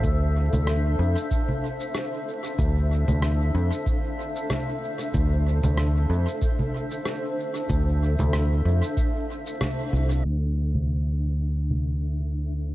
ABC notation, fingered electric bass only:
X:1
M:4/4
L:1/16
Q:"Swing 16ths" 1/4=94
K:Dm
V:1 name="Fingered electric bass" clef=bass
D,,3 D,,3 F,, z8 z | D,,3 D,,3 F,, z8 z | D,,3 D,,3 F,, z8 z | D,,3 D,,3 F,, z6 z C,,2 |
D,,16 |]